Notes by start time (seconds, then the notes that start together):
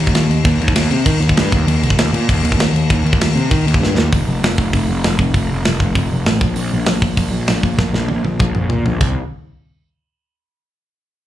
0.00 D#2, crash
0.07 kick
0.14 D#2, snare, crash
0.29 D#2, crash
0.45 D#2, kick, crash
0.61 D#2, crash
0.68 kick
0.76 D#2, snare, crash
0.91 C3, crash
1.06 D#3, kick, crash
1.20 D#2, crash
1.29 kick
1.37 G2, snare, crash
1.52 D#2, kick, crash
1.68 D#2, crash
1.83 C2, crash
1.90 kick
1.97 D#2, snare, crash
2.13 A#2, crash
2.29 D#2, kick, crash
2.43 D#2, crash
2.52 kick
2.58 D#2, snare, crash
2.73 D#2, crash
2.90 D#2, kick, crash
3.05 D#2, crash
3.13 kick
3.20 D#2, snare, crash
3.35 C3, crash
3.51 D#3, kick, crash
3.66 D#2, crash
3.74 kick
3.80 G2, snare
3.96 D#2, snare
4.13 F1, kick, open hi-hat
4.27 F1
4.42 F1, snare, open hi-hat
4.58 F1, kick
4.73 F1, kick, open hi-hat
4.89 F1
5.04 F1, snare, open hi-hat
5.19 F1, kick
5.34 F1, kick, open hi-hat
5.51 F1
5.65 F1, snare, open hi-hat
5.80 F1, kick
5.95 F1, kick, open hi-hat
6.12 F1
6.26 A1, snare, open hi-hat
6.41 A#1, kick
6.56 A#1, open hi-hat
6.74 A#1
6.86 A#1, snare, open hi-hat
7.02 A#1, kick
7.17 A#1, kick, open hi-hat
7.32 A#1
7.47 A#1, snare, open hi-hat
7.63 A#1, kick
7.78 A#1, kick, snare
7.94 A#1, snare
8.08 A#1, high tom
8.25 A#1, high tom
8.39 A#1, kick, mid tom
8.55 A#1, mid tom
8.69 A#2, floor tom
8.85 A#1, floor tom
9.01 C2, kick, crash